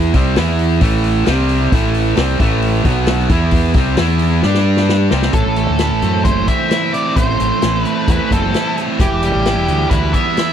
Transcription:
0.00 0.12 E2 loud
0.00 0.14 E3 medium
0.00 0.14 B3 loud
0.00 0.15 E4 medium
0.14 0.36 C2 medium
0.14 0.36 C3 medium
0.14 0.36 G3 medium
0.14 0.37 C4 medium
0.14 kick loud
0.14 open hi-hat medium
0.36 0.80 E2 medium
0.36 0.80 E3 loud
0.36 0.81 B3 medium
0.36 0.82 E4 loud
0.36 snare loud
0.36 open hi-hat medium
0.59 open hi-hat medium
0.81 1.24 A1 medium
0.81 1.26 A2 medium
0.81 1.26 E3 medium
0.81 1.27 A3 loud
0.81 kick loud
0.81 open hi-hat medium
1.04 open hi-hat medium
1.26 1.70 C2 medium
1.26 1.72 C3 medium
1.26 1.72 G3 medium
1.26 1.72 C4 medium
1.26 snare loud
1.26 open hi-hat medium
1.49 open hi-hat medium
1.72 2.14 A1 medium
1.72 2.17 A2 loud
1.72 2.17 E3 loud
1.72 2.18 A3 loud
1.72 kick loud
1.72 open hi-hat medium
1.95 open hi-hat medium
2.17 2.39 C2 medium
2.17 2.40 C3 medium
2.17 2.40 G3 loud
2.17 2.41 C4 loud
2.17 snare loud
2.17 open hi-hat medium
2.40 2.82 A1 loud
2.40 2.85 A2 medium
2.40 2.85 E3 loud
2.40 2.85 A3 loud
2.40 kick loud
2.40 open hi-hat medium
2.62 open hi-hat medium
2.85 3.27 B1 loud
2.85 3.31 B2 medium
2.85 3.31 F#3 medium
2.85 3.31 B3 medium
2.85 kick loud
2.85 open hi-hat medium
3.07 snare loud
3.07 open hi-hat medium
3.19 snare soft
3.29 3.72 E2 loud
3.29 3.76 E3 medium
3.29 3.76 B3 medium
3.29 kick loud
3.29 open hi-hat medium
3.34 3.76 E4 loud
3.51 kick loud
3.51 open hi-hat medium
3.74 3.96 C2 medium
3.74 3.98 C3 medium
3.74 3.98 G3 medium
3.74 kick loud
3.74 open hi-hat medium
3.78 3.99 C4 medium
3.97 4.40 E2 medium
3.97 4.43 E3 medium
3.97 4.43 B3 medium
3.97 4.43 E4 loud
3.97 snare loud
3.97 open hi-hat medium
4.19 open hi-hat medium
4.43 5.08 G2 medium
4.43 5.10 G3 medium
4.43 5.11 D4 medium
4.43 5.12 G4 loud
4.43 snare medium
4.54 snare medium
4.77 snare medium
4.89 snare medium
5.11 5.33 C2 medium
5.11 5.33 C3 medium
5.11 5.33 G3 medium
5.11 5.34 C4 medium
5.11 snare medium
5.22 snare medium
5.33 5.44 A1 medium
5.33 6.48 A2 medium
5.33 6.24 A4 medium
5.33 kick loud
5.33 closed hi-hat medium
5.46 5.67 A1 medium
5.56 5.79 E3 medium
5.56 6.02 A3 medium
5.56 closed hi-hat soft
5.70 5.92 D2 medium
5.79 7.39 E3 medium
5.79 6.70 E4 medium
5.79 snare loud
5.79 closed hi-hat medium
5.92 6.02 A1 medium
6.02 6.23 F#2 medium
6.02 7.17 A3 medium
6.02 6.47 C4 medium
6.02 closed hi-hat soft
6.25 6.46 F#1 medium
6.25 8.08 E3 medium
6.25 6.70 E4 medium
6.25 6.49 C5 medium
6.25 kick loud
6.25 closed hi-hat medium
6.48 7.62 C4 medium
6.48 6.93 E5 medium
6.48 kick medium
6.48 closed hi-hat medium
6.70 8.07 E4 medium
6.70 snare medium
6.70 closed hi-hat medium
6.93 8.08 A3 medium
6.93 8.08 C4 medium
6.93 7.15 D5 medium
6.93 closed hi-hat medium
7.16 7.38 A1 medium
7.16 8.31 A2 medium
7.16 7.80 C5 medium
7.16 kick loud
7.16 closed hi-hat medium
7.39 7.50 A1 medium
7.39 7.61 E3 medium
7.39 7.85 A3 medium
7.39 closed hi-hat medium
7.62 7.84 A1 medium
7.62 8.77 E3 medium
7.62 8.53 E4 medium
7.62 snare loud
7.62 closed hi-hat medium
7.80 8.11 B4 medium
7.85 9.00 A3 medium
7.85 8.30 C4 medium
7.85 closed hi-hat medium
8.08 8.18 E2 medium
8.08 8.99 E3 medium
8.08 8.53 E4 medium
8.08 8.33 B4 medium
8.08 kick medium
8.08 closed hi-hat medium
8.31 8.52 F#1 medium
8.31 9.00 C4 medium
8.31 8.75 A4 medium
8.31 kick medium
8.31 closed hi-hat medium
8.54 9.00 E4 medium
8.54 snare medium
8.54 closed hi-hat medium
8.76 8.99 A3 medium
8.76 9.00 C4 medium
8.76 closed hi-hat medium
8.99 9.10 E1 medium
8.99 9.44 E3 medium
8.99 9.95 G4 medium
8.99 kick loud
8.99 closed hi-hat medium
9.12 9.32 E1 medium
9.22 10.37 G3 medium
9.22 closed hi-hat medium
9.35 9.57 A1 medium
9.45 10.53 E3 medium
9.45 10.36 E4 medium
9.45 snare loud
9.45 closed hi-hat medium
9.57 9.68 E1 medium
9.68 9.89 D2 medium
9.68 10.53 G3 medium
9.68 10.14 B3 medium
9.68 closed hi-hat medium
9.90 10.12 D2 medium
9.90 10.53 E3 medium
9.90 10.37 E4 medium
9.90 10.14 B4 medium
9.90 kick medium
9.90 closed hi-hat medium
10.13 10.53 B3 medium
10.13 10.53 E5 medium
10.13 kick medium
10.13 closed hi-hat medium
10.37 10.53 E4 medium
10.37 snare loud
10.37 closed hi-hat medium

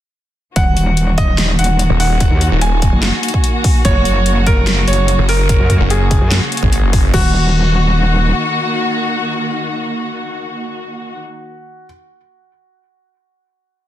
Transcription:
0.56 0.75 D#1 loud
0.56 3.82 D#3 medium
0.56 7.10 A#3 medium
0.56 7.10 F#4 medium
0.56 1.10 F#5 medium
0.56 kick loud
0.56 closed hi-hat medium
0.77 1.57 D#1 medium
0.77 closed hi-hat medium
0.97 closed hi-hat medium
1.18 1.50 D#5 medium
1.18 kick loud
1.18 closed hi-hat medium
1.38 snare loud
1.38 closed hi-hat medium
1.59 1.88 D#1 loud
1.59 1.91 F#5 medium
1.59 closed hi-hat medium
1.64 closed hi-hat medium
1.79 closed hi-hat medium
1.90 2.29 D#1 loud
2.00 2.54 F#5 medium
2.00 open hi-hat medium
2.20 kick loud
2.20 closed hi-hat medium
2.31 2.50 D#2 loud
2.41 closed hi-hat medium
2.52 2.91 D#1 medium
2.61 3.77 G#5 loud
2.61 closed hi-hat medium
2.82 kick loud
2.82 closed hi-hat medium
2.93 3.12 F#1 loud
3.03 snare loud
3.03 closed hi-hat medium
3.23 closed hi-hat medium
3.28 closed hi-hat medium
3.34 kick medium
3.44 closed hi-hat medium
3.64 kick loud
3.64 open hi-hat loud
3.85 4.04 F#1 loud
3.85 7.10 C#3 medium
3.85 4.39 C#5 loud
3.85 kick loud
3.85 closed hi-hat medium
4.05 4.86 F#1 loud
4.05 closed hi-hat medium
4.26 closed hi-hat medium
4.47 4.79 A#4 medium
4.47 kick loud
4.47 closed hi-hat soft
4.67 snare loud
4.67 closed hi-hat medium
4.88 5.17 F#1 loud
4.88 5.20 C#5 medium
4.88 closed hi-hat soft
4.93 closed hi-hat medium
5.08 closed hi-hat medium
5.19 5.58 F#1 loud
5.29 5.82 A#4 loud
5.29 open hi-hat medium
5.49 kick loud
5.49 closed hi-hat medium
5.60 5.79 F#2 loud
5.70 kick medium
5.70 closed hi-hat soft
5.80 6.20 F#1 loud
5.90 7.06 G#4 medium
5.90 closed hi-hat medium
6.11 kick loud
6.11 closed hi-hat soft
6.21 6.40 F#2 medium
6.31 snare loud
6.31 closed hi-hat medium
6.52 closed hi-hat soft
6.57 closed hi-hat medium
6.63 6.81 G#1 loud
6.63 kick medium
6.73 closed hi-hat medium
6.83 7.12 F#1 loud
6.93 kick loud
6.93 open hi-hat medium
7.14 8.33 D#1 loud
7.14 11.18 D#3 medium
7.14 11.19 A#3 medium
7.14 11.86 F#4 medium
7.14 11.18 F#4 medium
7.14 kick loud
7.14 crash medium

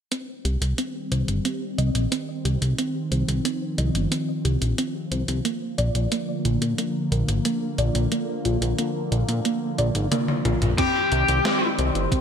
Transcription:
0.11 5.41 D#3 medium
0.11 2.76 G3 medium
0.11 5.41 C4 medium
0.11 0.39 C4 loud
0.11 closed hi-hat medium
0.45 0.57 C2 medium
0.45 0.72 G4 medium
0.45 closed hi-hat medium
0.61 0.74 C2 medium
0.61 closed hi-hat medium
0.78 1.06 C4 loud
0.78 closed hi-hat medium
1.11 1.24 C2 medium
1.11 1.39 C5 medium
1.11 closed hi-hat medium
1.28 1.40 G1 medium
1.28 closed hi-hat medium
1.45 1.72 C4 loud
1.45 closed hi-hat medium
1.78 1.90 C2 medium
1.78 2.06 D#5 loud
1.78 closed hi-hat medium
1.95 2.07 A#1 medium
1.95 closed hi-hat medium
2.12 2.39 C4 loud
2.12 closed hi-hat medium
2.45 2.57 C2 medium
2.45 2.72 G4 medium
2.45 closed hi-hat medium
2.62 2.74 C2 medium
2.62 closed hi-hat medium
2.78 10.74 F3 medium
2.78 3.06 C4 loud
2.78 closed hi-hat medium
3.11 3.24 C2 medium
3.11 3.39 C5 medium
3.11 closed hi-hat medium
3.28 3.40 C2 medium
3.28 closed hi-hat medium
3.45 3.72 C4 loud
3.45 closed hi-hat medium
3.78 3.90 C2 loud
3.78 4.06 D#5 loud
3.78 closed hi-hat medium
3.95 4.07 G1 medium
3.95 closed hi-hat medium
4.11 4.39 C4 loud
4.11 closed hi-hat medium
4.45 4.57 C2 medium
4.45 4.72 G4 medium
4.45 closed hi-hat medium
4.62 4.74 A#1 medium
4.62 closed hi-hat medium
4.78 5.06 C4 loud
4.78 closed hi-hat medium
5.11 5.24 C2 medium
5.11 5.39 C5 medium
5.11 closed hi-hat medium
5.28 5.40 C2 medium
5.28 closed hi-hat medium
5.45 10.74 D3 medium
5.45 5.72 A#3 loud
5.45 10.74 A#3 medium
5.45 closed hi-hat medium
5.78 5.91 A#1 medium
5.78 6.06 D5 loud
5.78 closed hi-hat medium
5.95 6.07 A#1 medium
5.95 closed hi-hat medium
6.11 6.39 A#3 loud
6.11 closed hi-hat medium
6.45 6.57 A#1 medium
6.45 6.72 F4 medium
6.45 closed hi-hat medium
6.62 6.74 A#2 medium
6.62 closed hi-hat medium
6.78 7.06 A#3 loud
6.78 closed hi-hat medium
7.12 7.24 A#1 medium
7.12 7.39 A#4 medium
7.12 closed hi-hat medium
7.28 7.40 G#1 medium
7.28 closed hi-hat medium
7.45 7.72 A#3 loud
7.45 closed hi-hat medium
7.78 7.90 A#1 medium
7.78 8.06 D5 loud
7.78 closed hi-hat medium
7.95 8.07 A#1 medium
7.95 closed hi-hat medium
8.12 8.39 A#3 loud
8.12 closed hi-hat medium
8.45 8.57 A#1 medium
8.45 8.72 F4 medium
8.45 closed hi-hat medium
8.61 8.74 A#1 medium
8.61 closed hi-hat medium
8.78 9.06 A#3 loud
8.78 closed hi-hat medium
9.12 9.24 A#1 loud
9.12 9.39 A#4 medium
9.12 closed hi-hat medium
9.28 9.41 A#2 medium
9.28 closed hi-hat medium
9.45 9.72 A#3 loud
9.45 closed hi-hat medium
9.78 9.91 A#1 medium
9.78 10.06 D5 loud
9.78 closed hi-hat medium
9.95 10.07 G#1 medium
9.95 closed hi-hat medium
10.12 10.39 A#3 loud
10.12 closed hi-hat medium
10.12 high tom medium
10.28 high tom medium
10.45 10.57 A#1 medium
10.45 10.72 F4 medium
10.45 closed hi-hat medium
10.45 mid tom medium
10.62 10.74 A#1 medium
10.62 closed hi-hat medium
10.62 mid tom medium
10.78 12.21 D#3 medium
10.78 12.21 G3 medium
10.78 11.06 C4 loud
10.78 12.21 C4 medium
10.78 11.65 G4 loud
10.78 kick loud
10.78 closed hi-hat loud
10.78 crash medium
11.12 11.24 C2 medium
11.12 11.39 G4 medium
11.12 closed hi-hat medium
11.28 11.41 C2 medium
11.28 closed hi-hat medium
11.45 11.72 C4 loud
11.45 snare loud
11.45 closed hi-hat medium
11.78 11.91 C2 loud
11.78 12.06 C5 medium
11.78 closed hi-hat medium
11.95 12.07 G1 medium
11.95 closed hi-hat medium
12.12 12.21 C4 loud
12.12 kick loud
12.12 closed hi-hat medium

